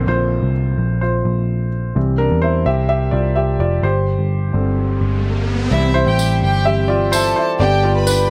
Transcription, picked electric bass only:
0.07 0.40 A#1 medium
0.43 0.76 C2 medium
0.78 1.22 A#1 medium
1.25 1.92 A#1 medium
1.96 2.29 C2 loud
2.31 2.64 E2 medium
2.66 3.10 C2 medium
3.13 3.57 C2 medium
3.59 3.82 F1 medium
3.83 4.16 G1 loud
4.19 4.52 G1 medium
4.54 4.98 G1 medium
5.01 5.68 G1 medium
5.71 6.04 C2 loud
6.07 6.40 A1 loud
6.43 7.32 G1 medium
7.60 8.30 G1 loud

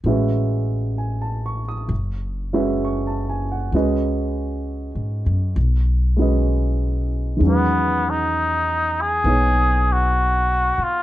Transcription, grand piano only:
0.06 1.90 G#3 soft
0.06 1.91 C#4 soft
0.06 1.91 F#4 soft
0.06 1.91 B4 soft
0.06 1.91 E5 soft
0.98 1.42 G#5 soft
1.22 1.61 A5 soft
1.46 1.73 C#6 soft
1.68 2.00 D#6 soft
2.53 3.73 G#3 soft
2.53 3.73 C#4 soft
2.53 3.73 F#4 soft
2.53 3.74 B4 soft
2.53 3.75 E5 soft
2.84 3.26 C#6 soft
3.07 3.45 A5 soft
3.29 3.57 G#5 soft
3.52 3.83 F#5 soft
3.74 5.56 G#3 soft
3.74 5.57 C#4 soft
3.74 5.57 F#4 soft
3.74 5.57 B4 soft
3.74 5.57 D#5 medium
6.17 7.37 G#3 soft
6.17 7.40 C#4 soft
6.17 7.41 F#4 soft
6.17 7.42 B4 soft
6.22 7.42 D#5 soft
7.37 11.03 D#3 soft
7.37 11.03 G#3 soft
7.42 11.03 F#3 soft
7.42 11.03 C#4 soft
7.48 11.03 B4 soft
9.25 11.03 B3 soft
9.25 11.03 D#4 soft
9.25 11.03 G#4 soft
9.25 11.03 C#5 soft

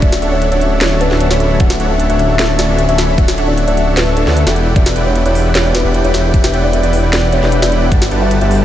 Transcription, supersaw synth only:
0.02 0.13 D4 medium
0.02 0.13 A4 medium
0.02 0.13 C#5 medium
0.02 0.13 E5 medium
0.22 0.49 D4 medium
0.22 0.49 A4 medium
0.22 0.49 C#5 medium
0.22 0.49 E5 medium
0.22 0.49 F#5 medium
0.51 0.79 D4 medium
0.51 0.79 A4 medium
0.51 0.79 C#5 medium
0.51 0.79 E5 medium
0.51 0.79 F#5 loud
0.81 1.08 D4 medium
0.81 1.08 A4 medium
0.81 1.08 C#5 medium
0.81 1.08 E5 medium
0.81 1.08 A5 loud
1.11 1.28 D4 medium
1.11 1.28 A4 medium
1.11 1.28 C#5 medium
1.11 1.28 E5 medium
1.11 1.28 F#5 loud
1.30 1.58 D4 medium
1.30 1.58 A4 medium
1.30 1.58 C#5 medium
1.30 1.58 E5 medium
1.30 1.58 B5 loud
1.60 1.71 D4 medium
1.60 1.71 A4 medium
1.60 1.71 C#5 medium
1.80 2.07 D4 medium
1.80 2.07 A4 medium
1.80 2.07 C#5 medium
1.80 2.07 E5 medium
1.80 2.07 F#5 medium
2.10 2.37 D4 medium
2.10 2.37 A4 medium
2.10 2.37 C#5 medium
2.10 2.37 E5 medium
2.10 2.37 F#5 loud
2.39 2.66 D4 medium
2.39 2.66 A4 medium
2.39 2.66 C#5 medium
2.39 2.66 E5 medium
2.39 2.66 A5 loud
2.69 2.86 D4 medium
2.69 2.86 A4 medium
2.69 2.86 C#5 medium
2.69 2.86 E5 medium
2.69 2.86 F#5 loud
2.89 3.16 D4 medium
2.89 3.16 A4 medium
2.89 3.16 C#5 medium
2.89 3.16 E5 medium
2.89 3.16 B5 loud
3.18 3.29 D4 medium
3.18 3.29 A4 medium
3.18 3.29 C#5 medium
3.18 3.29 E5 medium
3.18 3.29 F#5 loud
3.38 3.65 D4 medium
3.38 3.65 A4 medium
3.38 3.65 C#5 medium
3.38 3.65 E5 medium
3.38 3.65 F#5 medium
3.68 3.95 D4 medium
3.68 3.95 A4 medium
3.68 3.95 C#5 medium
3.68 3.95 E5 medium
3.68 3.95 F#5 loud
3.97 4.24 D4 medium
3.97 4.24 A4 medium
3.97 4.24 C#5 medium
3.97 4.24 E5 medium
3.97 4.24 A5 loud
4.27 4.44 D4 medium
4.27 4.44 A4 medium
4.27 4.44 C#5 medium
4.27 4.44 E5 medium
4.27 4.44 F#5 loud
4.46 4.73 E4 medium
4.46 4.73 B4 medium
4.46 4.73 D5 medium
4.46 4.73 F#5 medium
4.46 4.74 G5 medium
4.76 4.87 E4 medium
4.76 4.87 B4 medium
4.76 4.87 D5 medium
4.76 4.87 F#5 medium
4.76 4.87 G5 loud
4.95 5.23 E4 medium
4.95 5.23 B4 medium
4.95 5.23 D5 medium
4.95 5.23 F#5 medium
4.95 5.23 G5 medium
5.25 5.53 E4 medium
5.25 5.52 B4 medium
5.25 5.52 D5 medium
5.25 5.53 F#5 medium
5.25 5.52 G5 loud
5.55 5.82 E4 medium
5.55 5.82 B4 medium
5.55 5.82 D5 medium
5.85 6.02 E4 medium
5.85 6.02 B4 medium
5.85 6.02 D5 medium
5.85 6.02 F#5 medium
5.85 6.02 G5 loud
6.04 6.31 E4 medium
6.04 6.31 B4 medium
6.04 6.31 D5 medium
6.04 6.31 F#5 medium
6.04 6.31 G5 loud
6.34 6.45 E4 medium
6.34 6.44 B4 medium
6.34 6.44 D5 medium
6.34 6.45 F#5 medium
6.34 6.45 G5 loud
6.53 6.81 E4 medium
6.53 6.81 B4 medium
6.53 6.81 D5 medium
6.53 6.81 F#5 medium
6.53 6.81 G5 medium
6.83 7.10 E4 medium
6.83 7.10 B4 medium
6.83 7.10 D5 medium
6.83 7.10 F#5 medium
6.83 7.10 G5 loud
7.13 7.40 E4 medium
7.13 7.40 B4 medium
7.13 7.40 D5 medium
7.13 7.40 F#5 medium
7.13 7.40 G5 loud
7.42 7.60 E4 medium
7.42 7.60 B4 medium
7.42 7.60 D5 medium
7.42 7.60 F#5 medium
7.42 7.60 G5 loud
7.62 7.89 E4 medium
7.62 7.89 B4 medium
7.62 7.89 D5 medium
7.62 7.89 F#5 medium
7.62 7.89 G5 loud
7.92 8.02 G3 medium
7.92 8.02 G4 medium
7.92 8.02 B4 medium
7.92 8.02 F#5 medium
8.11 8.39 G3 medium
8.11 8.39 G4 medium
8.11 8.39 B4 medium
8.11 8.39 F#5 medium
8.11 8.39 A5 medium
8.41 8.65 G3 medium
8.41 8.65 G4 medium
8.41 8.65 B4 medium
8.41 8.65 F#5 medium
8.41 8.65 A5 loud

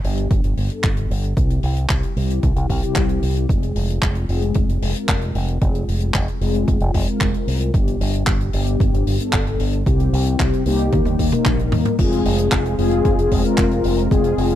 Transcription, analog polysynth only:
0.04 0.67 G2 medium
0.04 0.67 G3 medium
0.04 0.67 B3 medium
0.04 0.67 D4 medium
0.04 0.67 G4 loud
0.70 1.34 G2 medium
0.70 1.34 G3 medium
0.70 1.34 B3 medium
0.70 1.34 D4 medium
0.70 1.34 A4 medium
1.37 2.13 E4 medium
2.16 2.80 C3 medium
2.16 2.80 G3 medium
2.16 2.80 C4 medium
2.16 2.80 E4 medium
2.16 2.80 G4 loud
2.83 3.46 C3 loud
2.83 3.46 G3 medium
2.83 3.46 C4 medium
2.83 3.46 E4 medium
2.83 3.46 G4 loud
3.49 4.26 G#3 medium
3.49 4.26 C4 medium
3.49 4.26 F4 medium
3.49 4.26 G#4 medium
4.29 4.92 G#3 medium
4.29 4.92 C4 medium
4.29 4.92 F4 medium
4.29 4.92 G#4 loud
4.95 5.58 G#3 medium
4.95 5.58 C4 medium
4.95 5.58 F4 medium
4.95 5.58 A#4 medium
5.62 6.38 G#3 medium
5.62 6.38 G#4 medium
6.41 7.04 G#3 medium
6.41 7.04 C4 medium
6.41 7.04 F4 medium
6.41 7.04 G#4 loud
7.08 7.71 G#3 medium
7.08 7.71 C4 medium
7.08 7.71 F4 medium
7.08 7.71 A#4 medium
7.74 8.50 G2 medium
7.74 8.50 G3 medium
7.74 8.50 B3 medium
7.74 8.50 D4 medium
7.74 8.50 G4 medium
8.54 9.17 G2 medium
8.54 9.17 G3 medium
8.54 9.17 B3 medium
8.54 9.17 D4 medium
8.54 9.17 G4 loud
9.20 9.83 G2 medium
9.20 9.83 G3 medium
9.20 9.83 B3 medium
9.20 9.83 D4 medium
9.20 9.83 A4 medium
9.86 10.63 C3 medium
9.86 10.63 G3 medium
9.86 10.63 C4 medium
9.86 10.63 E4 medium
9.86 10.63 G4 medium
10.66 11.29 G3 medium
10.66 11.29 A#3 medium
10.66 11.29 D#4 medium
10.66 11.29 G4 loud
11.32 11.96 G3 medium
11.32 11.96 A#3 medium
11.32 11.96 D#4 medium
11.32 11.96 A#4 medium
11.99 12.75 G#3 medium
11.99 12.75 C4 medium
11.99 12.75 F4 medium
11.99 12.75 G#4 medium
12.78 13.42 G#3 medium
12.78 13.42 C4 medium
12.78 13.42 F4 medium
12.78 13.42 G#4 loud
13.45 14.08 G#3 medium
13.45 14.08 C4 medium
13.45 14.08 F4 medium
13.45 14.08 A#4 medium
14.11 14.55 G#3 medium
14.11 14.55 C4 medium
14.11 14.55 F4 medium
14.11 14.55 G#4 medium

